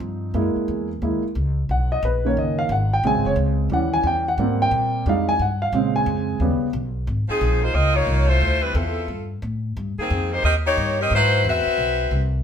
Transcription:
0.00 0.33 G2 medium
0.00 0.30 F3 medium
0.00 0.30 C4 soft
0.00 0.30 D#4 medium
0.34 0.54 F#2 medium
0.34 0.87 G#3 medium
0.34 0.87 A#3 medium
0.34 0.87 E4 medium
0.56 muted upright bass stroke soft
0.68 1.01 E2 loud
1.02 1.22 D#2 medium
1.02 1.21 G#3 soft
1.02 1.21 A#3 soft
1.02 1.22 E4 medium
1.23 muted upright bass stroke soft
1.35 1.68 C#2 medium
1.69 2.02 B1 medium
1.69 1.91 F#5 medium
1.92 2.03 D#5 medium
2.03 2.35 A#1 loud
2.03 2.25 B4 medium
2.25 2.68 D#3 medium
2.25 2.69 A#3 soft
2.25 2.69 C#4 medium
2.25 2.37 C#5 medium
2.37 2.68 F#1 medium
2.37 2.58 D#5 medium
2.59 2.70 F5 medium
2.69 3.02 G#1 loud
2.69 2.92 F#5 medium
2.93 3.04 G5 medium
3.03 3.15 A#1 loud
3.03 3.68 C#3 medium
3.03 3.68 G#3 soft
3.03 3.68 C4 medium
3.03 3.26 G#5 medium
3.15 3.24 G#1 medium
3.25 3.35 F1 medium
3.25 3.33 C#5 medium
3.36 3.69 C#2 loud
3.70 4.03 D#2 medium
3.70 4.24 E3 medium
3.70 4.24 G3 soft
3.70 4.24 C#4 medium
3.70 3.93 F#5 medium
3.93 4.05 G#5 medium
4.03 4.37 E2 loud
4.03 4.27 G5 medium
4.28 4.59 F#5 medium
4.38 4.71 G#2 medium
4.38 5.03 G3 medium
4.38 5.03 A#3 soft
4.38 5.03 C4 medium
4.62 5.04 G5 loud
4.71 5.04 A#2 loud
5.06 5.38 F2 medium
5.06 5.31 G3 medium
5.06 5.31 G#3 soft
5.06 5.32 D#4 medium
5.06 5.28 F5 medium
5.29 5.40 G#5 loud
5.39 5.72 G2 medium
5.39 5.61 F#5 medium
5.62 5.93 F5 medium
5.73 6.05 A#2 loud
5.73 6.37 C#3 medium
5.73 6.38 G#3 medium
5.73 6.38 C4 medium
5.96 6.38 G#5 medium
6.06 6.39 F2 loud
6.40 6.60 D#2 medium
6.40 6.65 C#3 medium
6.40 6.66 G3 soft
6.40 6.66 B3 medium
6.61 muted upright bass stroke soft
6.73 7.06 B1 loud
7.07 7.27 G#1 medium
7.29 7.60 F3 medium
7.29 7.60 C4 medium
7.29 7.60 D#4 medium
7.29 7.60 G#4 loud
7.29 muted upright bass stroke soft
7.41 7.73 A#1 loud
7.62 7.75 A#3 medium
7.62 7.74 D#4 medium
7.62 7.73 F4 medium
7.62 7.74 C5 loud
7.74 8.06 C#2 medium
7.74 7.96 C4 medium
7.74 7.94 F4 loud
7.74 7.96 A#4 loud
7.74 7.96 D#5 loud
7.95 8.29 A#3 loud
7.95 8.30 D#4 medium
7.95 8.27 F4 loud
7.95 8.29 C#5 loud
8.07 8.40 C2 medium
8.27 8.62 A3 medium
8.27 8.61 E4 medium
8.27 8.62 F4 medium
8.27 8.62 C5 loud
8.41 8.74 D2 loud
8.62 8.75 G3 medium
8.62 8.73 C4 medium
8.62 8.73 E4 medium
8.62 8.75 B4 loud
8.74 9.08 E2 loud
8.74 9.09 C4 medium
8.74 9.09 E4 medium
8.74 9.30 F4 medium
8.74 9.30 A4 medium
9.08 9.41 G2 medium
9.42 9.75 A2 medium
9.77 9.97 G2 medium
9.98 10.30 D#3 medium
9.98 10.30 A#3 medium
9.98 10.30 C4 medium
9.98 10.30 G#4 medium
9.98 muted upright bass stroke soft
10.10 10.43 F2 loud
10.32 10.44 A#3 medium
10.32 10.45 D#4 medium
10.32 10.43 G4 medium
10.32 10.45 C5 loud
10.44 10.77 D#2 medium
10.44 10.55 C4 medium
10.44 10.54 G4 medium
10.44 10.54 A#4 medium
10.44 10.54 D#5 loud
10.66 10.97 A#3 medium
10.66 10.97 D#4 medium
10.66 10.97 G4 medium
10.66 10.97 C#5 loud
10.77 11.10 G2 loud
11.01 11.12 C4 medium
11.01 11.12 G4 medium
11.01 11.12 A#4 medium
11.01 11.12 D#5 loud
11.11 11.44 G#2 loud
11.11 11.44 F#3 loud
11.11 11.44 E4 loud
11.11 11.44 B4 loud
11.11 11.44 C5 loud
11.44 11.65 E2 loud
11.44 12.31 F#4 loud
11.44 12.31 E5 loud
11.49 12.32 C4 medium
11.49 12.32 B4 medium
11.66 muted upright bass stroke soft
11.78 12.10 B1 medium
12.11 12.43 C2 loud

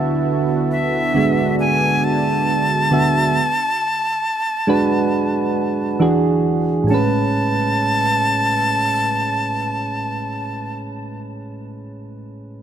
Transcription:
0.00 0.87 D3 medium
0.00 3.31 D3 medium
0.00 0.87 B3 medium
0.00 3.31 B3 medium
0.00 1.13 E4 medium
0.00 0.91 F#4 medium
0.00 3.31 F#4 medium
0.00 0.88 E5 loud
0.00 3.37 A5 medium
0.72 1.55 E5 medium
1.14 2.63 D3 medium
1.14 2.65 G#3 medium
1.14 2.64 B3 medium
1.14 3.33 D4 medium
1.14 2.64 F#4 medium
1.60 2.05 G#5 loud
2.04 6.00 A5 loud
2.91 3.35 D3 medium
2.91 3.35 B3 medium
2.91 3.36 F#4 medium
2.91 3.36 E5 medium
4.67 6.00 G#3 medium
4.67 5.99 D4 medium
4.67 6.00 F#4 medium
4.67 6.01 B4 loud
5.99 6.74 E3 medium
5.99 6.75 D4 medium
5.99 6.75 F#4 medium
5.99 6.75 G#4 loud
6.84 10.74 A2 medium
6.84 10.77 G#3 medium
6.89 10.81 C#4 medium
6.89 10.79 A5 loud
6.94 10.84 B4 medium

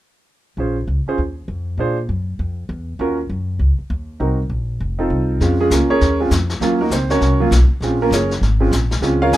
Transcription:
0.57 0.87 A#1 medium
0.57 0.75 C#4 soft
0.57 0.75 F4 soft
0.57 0.76 G#4 soft
0.57 0.76 C5 soft
0.88 1.05 C#2 medium
1.06 1.18 C#4 soft
1.06 1.18 F4 soft
1.06 1.18 G#4 soft
1.06 1.19 C5 medium
1.06 muted upright bass stroke soft
1.18 1.47 D#2 medium
1.48 1.77 F2 medium
1.78 2.08 A#2 medium
1.78 1.96 D4 medium
1.78 1.96 F4 medium
1.78 1.96 G#4 soft
1.78 1.96 C5 medium
2.09 2.38 F#2 medium
2.39 2.68 F2 medium
2.69 2.99 E2 medium
2.99 3.29 D#2 medium
2.99 3.16 C#4 medium
2.99 3.17 F4 soft
2.99 3.17 F#4 soft
2.99 3.17 A#4 medium
3.29 3.59 F#2 medium
3.59 3.77 C#2 medium
3.79 muted upright bass stroke soft
3.90 4.19 D#2 medium
4.20 4.49 C2 medium
4.20 4.37 C4 soft
4.20 4.37 D#4 soft
4.20 4.37 F#4 soft
4.20 4.38 A#4 medium
4.50 4.79 A#1 medium
4.80 5.10 F1 medium
4.99 5.38 C4 medium
4.99 5.38 D#4 soft
4.99 5.39 F4 soft
4.99 5.39 A4 medium
5.10 5.40 C2 medium
5.40 5.70 F2 medium
5.40 5.58 G#3 soft
5.40 5.58 C4 soft
5.40 5.58 C#4 soft
5.40 5.58 F4 medium
5.40 brush sweep soft
5.40 snare soft
5.60 5.72 G#3 medium
5.60 5.71 C#4 medium
5.60 5.71 F4 medium
5.60 5.71 G#4 medium
5.70 5.88 C#2 medium
5.70 5.90 A#3 soft
5.70 5.89 C#4 medium
5.70 5.90 F4 soft
5.70 5.89 A#4 medium
5.70 snare medium
5.70 hi-hat pedal soft
5.89 6.18 C#4 medium
5.89 6.18 G#4 medium
5.89 6.18 A#4 medium
5.89 6.18 C#5 medium
5.89 muted upright bass stroke soft
6.01 6.30 D#2 medium
6.01 brush sweep soft
6.01 snare soft
6.20 6.31 G#3 medium
6.20 6.31 C4 soft
6.20 6.31 C#4 soft
6.20 6.31 F4 medium
6.31 6.60 F2 medium
6.31 snare soft
6.31 hi-hat pedal medium
6.50 snare soft
6.60 6.90 D#2 medium
6.60 6.78 F#3 medium
6.60 6.78 A#3 medium
6.60 6.78 C#4 medium
6.60 6.79 F4 medium
6.60 brush sweep soft
6.60 snare soft
6.81 6.92 A#3 medium
6.81 6.92 D#4 medium
6.81 6.92 F#4 medium
6.81 6.92 A#4 medium
6.91 7.20 C#2 medium
6.91 7.10 C4 medium
6.91 7.10 C5 medium
6.91 snare soft
6.91 hi-hat pedal soft
7.10 7.39 C#4 medium
7.10 7.38 F#4 medium
7.10 7.38 A#4 medium
7.10 7.38 C#5 medium
7.10 snare soft
7.21 7.50 C2 medium
7.21 brush sweep soft
7.21 snare soft
7.40 7.51 F#3 medium
7.40 7.51 A#3 medium
7.40 7.51 C#4 medium
7.40 7.51 F4 medium
7.51 7.69 B1 medium
7.51 snare medium
7.51 hi-hat pedal soft
7.70 muted upright bass stroke soft
7.81 8.10 A#1 medium
7.81 7.99 G#3 soft
7.81 7.99 C4 soft
7.81 8.00 C#4 soft
7.81 brush sweep soft
7.81 snare soft
7.85 8.00 F4 medium
8.02 8.13 A#3 medium
8.02 8.12 C#4 medium
8.02 8.13 F4 medium
8.02 8.12 A#4 medium
8.11 8.40 F#1 medium
8.11 8.31 C#4 soft
8.11 8.31 G#4 medium
8.11 8.31 A#4 medium
8.11 8.31 C#5 medium
8.11 snare soft
8.11 hi-hat pedal soft
8.31 snare soft
8.41 8.71 G#1 medium
8.41 brush sweep soft
8.41 snare soft
8.60 8.71 G#3 medium
8.60 8.71 C4 medium
8.60 8.71 C#4 soft
8.60 8.71 F4 medium
8.71 9.01 A#1 medium
8.71 snare soft
8.71 hi-hat pedal medium
8.91 snare soft
9.01 9.31 C#2 medium
9.01 9.37 G#3 medium
9.01 9.37 C4 soft
9.01 9.37 C#4 medium
9.01 9.21 F4 medium
9.01 brush sweep soft
9.01 snare soft
9.22 9.33 F4 medium
9.22 9.33 A#4 medium
9.22 9.33 C#5 medium
9.22 9.33 F5 medium
9.32 9.37 D#2 medium
9.32 9.37 C#5 medium
9.32 9.37 F5 medium
9.32 9.37 G#5 medium
9.32 snare soft
9.32 hi-hat pedal soft

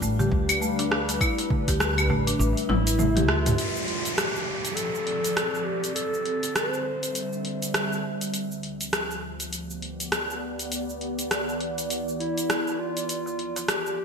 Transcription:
0.00 0.25 A1 medium
0.00 3.58 G3 medium
0.00 0.19 A3 medium
0.00 4.47 D4 medium
0.00 4.55 B4 medium
0.00 1.21 F5 medium
0.00 cabasa medium
0.19 0.31 G4 loud
0.19 darbuka ka medium
0.19 darbuka dum medium
0.19 cabasa soft
0.32 1.16 D2 medium
0.32 kick medium
0.49 0.61 G4 medium
0.49 open hi-hat medium
0.49 cabasa medium
0.49 claves medium
0.62 0.78 A3 medium
0.62 cabasa medium
0.79 0.90 D4 loud
0.79 open hi-hat soft
0.79 darbuka ka medium
0.79 cabasa soft
0.91 1.08 D4 medium
0.91 cross-stick medium
0.91 darbuka ka medium
1.09 open hi-hat medium
1.09 darbuka tek medium
1.09 cabasa medium
1.21 1.31 E4 loud
1.21 kick loud
1.21 cabasa medium
1.21 claves medium
1.38 open hi-hat soft
1.38 darbuka ka medium
1.38 cabasa soft
1.50 1.67 A3 medium
1.50 kick medium
1.50 darbuka dum medium
1.68 2.10 D2 loud
1.68 1.80 G4 loud
1.68 kick medium
1.68 open hi-hat medium
1.68 darbuka ka medium
1.68 darbuka tek medium
1.68 cabasa medium
1.79 4.41 E5 medium
1.79 cross-stick medium
1.79 cabasa medium
1.98 2.09 G4 medium
1.98 cabasa soft
1.98 claves medium
2.10 2.33 A1 medium
2.10 2.26 A3 loud
2.10 darbuka tek medium
2.10 darbuka dum loud
2.27 2.38 D4 loud
2.27 open hi-hat medium
2.27 cabasa medium
2.39 2.52 A1 medium
2.39 2.56 D4 loud
2.39 cabasa medium
2.57 open hi-hat soft
2.57 cabasa soft
2.69 3.29 A1 medium
2.69 3.30 E4 loud
2.69 2.79 E4 loud
2.69 high tom medium
2.69 darbuka tek medium
2.87 open hi-hat medium
2.87 cabasa medium
2.99 3.15 A3 medium
2.99 mid tom medium
2.99 cabasa medium
3.16 3.28 G4 loud
3.16 open hi-hat soft
3.16 mid tom medium
3.16 cabasa soft
3.28 3.52 D2 medium
3.28 3.86 F4 medium
3.28 cross-stick medium
3.46 3.57 G4 medium
3.46 mid tom medium
3.46 open hi-hat medium
3.46 cabasa medium
3.58 5.96 F3 medium
3.58 open hi-hat soft
3.58 downlifter medium
3.58 cabasa soft
3.76 8.33 C4 medium
3.76 9.30 A4 medium
3.76 cabasa soft
3.87 4.18 F4 medium
3.87 open hi-hat soft
4.05 open hi-hat soft
4.05 cabasa medium
4.16 4.76 G4 medium
4.16 cross-stick medium
4.16 open hi-hat soft
4.16 cabasa soft
4.30 6.92 D5 medium
4.36 cabasa soft
4.65 open hi-hat soft
4.65 cabasa medium
4.75 5.66 A4 medium
4.75 open hi-hat medium
4.75 cabasa medium
4.95 cabasa soft
5.07 open hi-hat soft
5.24 open hi-hat soft
5.24 cabasa medium
5.37 cross-stick medium
5.37 open hi-hat soft
5.37 cabasa soft
5.55 cabasa soft
5.64 5.95 G4 medium
5.84 open hi-hat soft
5.84 cabasa medium
5.95 8.34 D3 medium
5.95 6.56 A4 medium
5.95 open hi-hat soft
5.95 cabasa soft
6.14 cabasa soft
6.18 8.34 G3 medium
6.25 open hi-hat soft
6.43 open hi-hat soft
6.43 cabasa medium
6.55 7.44 C5 medium
6.55 cross-stick medium
6.55 open hi-hat soft
6.55 cabasa soft
6.62 9.20 E5 medium
6.74 cabasa soft
7.03 open hi-hat soft
7.03 cabasa medium
7.15 open hi-hat soft
7.15 cabasa soft
7.33 cabasa soft
7.45 open hi-hat soft
7.62 open hi-hat soft
7.62 cabasa medium
7.74 cross-stick medium
7.74 open hi-hat soft
7.74 cabasa medium
7.92 cabasa soft
8.21 open hi-hat soft
8.21 cabasa medium
8.34 13.09 D2 medium
8.34 open hi-hat soft
8.34 cabasa medium
8.40 10.71 F3 medium
8.51 cabasa soft
8.63 open hi-hat soft
8.79 14.05 G4 medium
8.79 open hi-hat soft
8.79 cabasa medium
8.89 13.09 B3 medium
8.93 14.05 D5 medium
8.93 cross-stick medium
8.93 open hi-hat soft
8.93 cabasa soft
9.11 cabasa soft
9.40 open hi-hat soft
9.40 cabasa medium
9.53 open hi-hat soft
9.53 cabasa medium
9.70 cabasa soft
9.82 open hi-hat soft
10.00 open hi-hat soft
10.00 cabasa medium
10.12 cross-stick medium
10.12 open hi-hat soft
10.12 cabasa soft
10.30 cabasa soft
10.59 open hi-hat soft
10.59 cabasa medium
10.72 open hi-hat soft
10.72 cabasa medium
10.88 13.09 E3 medium
10.88 cabasa soft
11.01 open hi-hat soft
11.19 open hi-hat soft
11.19 cabasa medium
11.31 cross-stick medium
11.31 open hi-hat soft
11.31 cabasa soft
11.49 cabasa soft
11.61 open hi-hat soft
11.78 open hi-hat soft
11.78 cabasa medium
11.90 open hi-hat soft
11.90 cabasa soft
12.08 cabasa soft
12.19 12.80 E4 medium
12.19 open hi-hat soft
12.38 open hi-hat soft
12.38 cabasa medium
12.50 cross-stick medium
12.50 open hi-hat soft
12.50 cabasa soft
12.68 cabasa soft
12.79 13.70 F4 medium
12.97 open hi-hat soft
12.97 cabasa medium
13.09 14.05 F3 medium
13.09 open hi-hat soft
13.09 cabasa medium
13.26 darbuka ka soft
13.26 cabasa soft
13.31 14.05 C4 medium
13.39 open hi-hat soft
13.56 open hi-hat soft
13.56 darbuka ka soft
13.56 darbuka tek medium
13.56 cabasa medium
13.61 14.05 A4 medium
13.68 14.05 G4 medium
13.68 cross-stick medium
13.68 open hi-hat soft
13.68 cabasa soft
13.86 cabasa soft

